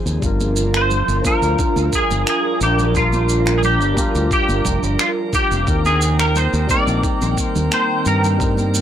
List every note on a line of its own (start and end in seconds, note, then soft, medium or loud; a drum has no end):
0.00 0.19 D#3 medium
0.00 0.17 F3 medium
0.00 0.18 F3 medium
0.00 0.18 C4 medium
0.00 0.19 D#4 medium
0.00 0.18 G#4 medium
0.00 0.20 G#4 medium
0.06 0.18 D#2 medium
0.06 shaker soft
0.20 1.01 G1 medium
0.20 5.64 F3 medium
0.20 1.19 G3 medium
0.20 1.20 D4 medium
0.20 5.64 D4 medium
0.20 5.64 F4 medium
0.20 1.21 F4 medium
0.20 5.64 A#4 medium
0.20 8.81 A#4 medium
0.20 8.81 A#5 medium
0.20 kick loud
0.20 shaker soft
0.26 1.23 A#4 medium
0.40 high conga medium
0.40 shaker soft
0.56 shaker medium
0.74 1.26 C5 medium
0.74 finger snap medium
0.74 shaker soft
0.91 low conga medium
0.91 shaker soft
1.08 1.20 G1 loud
1.08 shaker soft
1.22 2.90 F3 medium
1.22 2.91 D4 medium
1.22 kick loud
1.22 high conga medium
1.22 shaker medium
1.26 2.92 F4 medium
1.26 1.90 A#4 medium
1.26 2.93 A#4 medium
1.42 1.54 D2 loud
1.42 shaker soft
1.59 kick loud
1.59 high bongo medium
1.59 shaker soft
1.76 1.88 D2 medium
1.76 high bongo soft
1.76 high conga medium
1.76 shaker soft
1.93 2.28 G#4 medium
1.93 kick medium
1.93 shaker medium
2.10 2.23 G1 loud
2.10 high bongo soft
2.10 low conga medium
2.10 shaker soft
2.27 2.62 G#4 medium
2.27 finger snap medium
2.27 shaker soft
2.61 3.81 A#1 medium
2.61 2.94 G4 medium
2.61 shaker medium
2.79 low conga medium
2.79 shaker soft
2.92 3.92 G3 medium
2.92 3.93 D4 medium
2.92 kick loud
2.92 shaker soft
2.96 3.94 F4 medium
2.96 3.59 F4 medium
2.96 3.95 A#4 medium
3.13 high conga medium
3.13 shaker soft
3.29 shaker medium
3.46 finger snap medium
3.46 high bongo medium
3.46 shaker soft
3.58 3.64 G#4 medium
3.63 4.32 G4 medium
3.63 low conga medium
3.63 shaker soft
3.81 3.93 G1 medium
3.81 shaker soft
3.94 5.62 G3 medium
3.94 5.63 D4 medium
3.94 kick loud
3.94 high conga medium
3.94 shaker medium
3.98 5.64 F4 medium
3.98 5.65 A#4 medium
4.15 4.27 D2 loud
4.15 high bongo soft
4.15 shaker soft
4.31 4.96 G4 medium
4.31 kick loud
4.31 shaker soft
4.48 4.61 G1 loud
4.48 high conga medium
4.48 shaker soft
4.65 4.79 F1 medium
4.65 kick medium
4.65 low conga medium
4.65 shaker medium
4.83 4.95 G1 medium
4.83 shaker soft
4.99 5.10 F4 loud
4.99 finger snap medium
4.99 shaker soft
5.33 5.83 G4 loud
5.33 kick loud
5.33 high bongo medium
5.33 shaker medium
5.51 5.64 F1 medium
5.51 shaker soft
5.64 6.46 D#2 medium
5.64 8.81 D#3 medium
5.64 6.64 A#3 medium
5.64 8.81 A#3 medium
5.64 6.65 C4 medium
5.64 8.81 C4 medium
5.64 8.81 G5 medium
5.64 kick loud
5.64 shaker soft
5.68 6.66 D#4 medium
5.68 6.67 A#4 medium
5.85 6.17 G#4 medium
5.85 high conga medium
5.85 shaker soft
6.02 shaker medium
6.19 6.37 A#4 medium
6.19 finger snap medium
6.19 shaker soft
6.36 6.70 C5 loud
6.36 low conga medium
6.36 shaker soft
6.53 6.66 D#2 loud
6.53 shaker soft
6.67 8.35 G3 medium
6.67 8.36 C4 medium
6.67 7.44 D5 loud
6.67 kick loud
6.67 high conga medium
6.67 shaker medium
6.71 8.37 D#4 medium
6.71 8.38 A#4 medium
6.87 7.00 A#1 loud
6.87 shaker soft
7.03 kick loud
7.03 high bongo medium
7.03 shaker soft
7.22 7.34 A#1 medium
7.22 high bongo medium
7.22 high conga medium
7.22 shaker soft
7.38 kick medium
7.38 shaker medium
7.44 7.73 C5 loud
7.56 7.68 D#2 medium
7.56 high bongo soft
7.56 low conga medium
7.56 shaker soft
7.72 8.05 C5 loud
7.72 finger snap medium
7.72 shaker soft
8.06 8.81 G2 medium
8.06 8.81 A#4 loud
8.06 shaker medium
8.24 low conga medium
8.24 shaker soft
8.38 8.81 G3 medium
8.38 8.81 C4 medium
8.38 8.81 D#4 medium
8.38 kick loud
8.38 shaker soft
8.44 8.81 A#4 medium
8.57 high conga medium
8.57 shaker soft
8.75 shaker medium